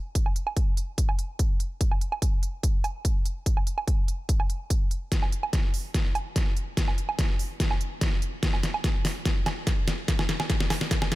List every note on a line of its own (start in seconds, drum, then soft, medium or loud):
0.15 kick medium
0.15 closed hi-hat medium
0.26 low woodblock soft
0.36 closed hi-hat medium
0.47 low woodblock medium
0.57 kick loud
0.57 closed hi-hat medium
0.77 closed hi-hat medium
0.98 kick medium
0.98 closed hi-hat medium
1.09 low woodblock medium
1.19 closed hi-hat medium
1.39 kick medium
1.39 closed hi-hat medium
1.60 closed hi-hat medium
1.81 kick loud
1.81 closed hi-hat medium
1.92 low woodblock soft
2.01 closed hi-hat medium
2.12 low woodblock medium
2.22 kick loud
2.22 closed hi-hat medium
2.43 closed hi-hat medium
2.63 kick medium
2.63 closed hi-hat medium
2.84 closed hi-hat medium
2.84 low woodblock medium
3.05 kick loud
3.05 closed hi-hat medium
3.26 closed hi-hat medium
3.46 kick medium
3.46 closed hi-hat medium
3.57 low woodblock soft
3.67 closed hi-hat medium
3.78 low woodblock medium
3.88 kick loud
3.88 closed hi-hat medium
4.08 closed hi-hat soft
4.29 kick loud
4.29 closed hi-hat medium
4.40 low woodblock medium
4.50 closed hi-hat medium
4.70 kick loud
4.70 closed hi-hat medium
4.91 closed hi-hat medium
5.12 kick loud
5.12 snare soft
5.12 closed hi-hat medium
5.23 low woodblock medium
5.32 closed hi-hat soft
5.43 low woodblock medium
5.53 kick loud
5.53 snare soft
5.53 closed hi-hat medium
5.74 open hi-hat medium
5.94 kick medium
5.94 snare medium
5.94 closed hi-hat medium
6.15 closed hi-hat medium
6.15 low woodblock medium
6.36 kick loud
6.36 snare medium
6.36 closed hi-hat medium
6.57 closed hi-hat soft
6.77 kick loud
6.77 snare medium
6.77 closed hi-hat medium
6.88 low woodblock medium
6.98 closed hi-hat soft
7.09 low woodblock medium
7.19 kick loud
7.19 snare medium
7.19 closed hi-hat medium
7.39 open hi-hat medium
7.60 kick loud
7.60 snare medium
7.60 closed hi-hat medium
7.71 low woodblock medium
7.81 closed hi-hat medium
8.01 kick loud
8.01 snare medium
8.01 closed hi-hat medium
8.22 closed hi-hat soft
8.43 kick loud
8.43 snare medium
8.43 closed hi-hat medium
8.54 low woodblock soft
8.63 snare medium
8.63 closed hi-hat medium
8.74 low woodblock medium
8.84 kick loud
8.84 snare medium
8.84 closed hi-hat medium
9.05 snare medium
9.05 open hi-hat medium
9.25 kick loud
9.25 snare medium
9.25 closed hi-hat medium
9.46 snare medium
9.46 closed hi-hat medium
9.46 low woodblock medium
9.67 kick loud
9.67 snare medium
9.67 closed hi-hat medium
9.88 snare medium
9.88 closed hi-hat medium
10.08 kick loud
10.08 snare medium
10.08 closed hi-hat medium
10.19 snare medium
10.19 low woodblock soft
10.29 snare medium
10.29 closed hi-hat medium
10.40 snare medium
10.40 low woodblock medium
10.50 kick loud
10.50 snare medium
10.50 closed hi-hat medium
10.60 snare medium
10.70 snare loud
10.70 open hi-hat loud
10.70 low woodblock medium
10.81 snare medium
10.91 kick loud
10.91 snare loud
10.91 closed hi-hat medium
11.02 snare medium
11.02 low woodblock medium
11.12 snare loud
11.12 closed hi-hat medium